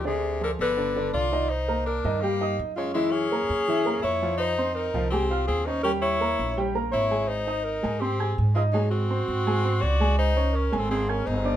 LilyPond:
<<
  \new Staff \with { instrumentName = "Alto saxophone" } { \time 4/4 \key c \minor \tempo 4 = 166 aes'4 bes'8 b'4. d''4 | c''4 bes'4 g'4 r8 f'8 | e'8 gis'2~ gis'8 cis''4 | c''4 bes'4 g'4 aes'8 c''8 |
bes'8 des''4.~ des''16 r8. des''4 | c''4 bes'4 g'4 r8 f'8 | ees'8 ges'2~ ges'8 d''4 | c''4 \tuplet 3/2 { bes'4 a'8 } aes'8 bes'8 c''4 | }
  \new Staff \with { instrumentName = "Grand piano" } { \time 4/4 \key c \minor <d d' d''>4 <f f' aes'>4 <d d' d''>8 <d d' d''>4 <ees ees' ees''>8 | r8 <bes bes' bes''>4 <ees ees' ees''>8 <g g' g''>8 <ees' ees'' ees'''>4 <des' des'' des'''>8 | <e e' e''>4 <ais ais' ais''>4 <e e' e''>8 <ais ais' ais''>4 <f f' f''>8~ | <f f' f''>8 <c' c'' c'''>4 <f f' f''>8 <aes aes' aes''>8 <f' f'' f'''>4 <des' des'' des'''>8 |
<g g' g''>4 <bes bes' bes''>4 <g g' g''>8 <bes bes' bes''>4 <aes aes' aes''>8~ | <aes aes' aes''>8 <ees' ees'' ees'''>4 <aes aes' aes''>8 <c' c'' c'''>8 <aes' aes'' aes'''>4 <ees' ees'' ees'''>8 | <aes aes' aes''>4 <c' c'' c'''>4 <aes aes' aes''>8 <c' c'' c'''>4 <aes aes' aes''>8~ | <aes aes' aes''>8 <des' des'' des'''>4 <aes aes' aes''>8 <c' c'' c'''>8 <aes' aes'' aes'''>4 <d' d'' d'''>8 | }
  \new Staff \with { instrumentName = "Tenor saxophone" } { \time 4/4 \key c \minor c4 d8 d4. f'4 | ees'4 d'4 bes4 r8 aes8 | gis8 cis'2~ cis'8 e'4 | ees'4 ees'4 c'4 c'8 ees'8 |
des'8 fes'4.~ fes'16 r8. fes'4 | ees'4 ees'4 c'4 r8 aes8 | ges8 c'2~ c'8 ges'4 | ees'4 \tuplet 3/2 { des'4 c'8 } c'8 des'8 ees'4 | }
  \new Staff \with { instrumentName = "Upright bass" } { \clef bass \time 4/4 \key c \minor d,4. g,,4. c,4~ | c,4. g,4. fis,4~ | fis,4. fis,4. f,4~ | f,4. c,4. ees,4~ |
ees,4. bes,,4. aes,,4~ | aes,,4. aes,4. aes,4~ | aes,4. aes,4. des,4~ | des,4. aes,,4. g,,4 | }
>>